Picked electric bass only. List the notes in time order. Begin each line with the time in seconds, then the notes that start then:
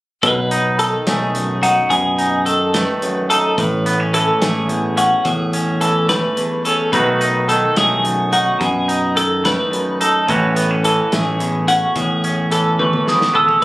0.23 B1
1.07 B1
1.91 F#2
3.58 A1
4.42 A1
5.25 E2
6.93 B1
7.77 B1
8.61 F#2
10.29 A1
11.13 A1
11.96 E2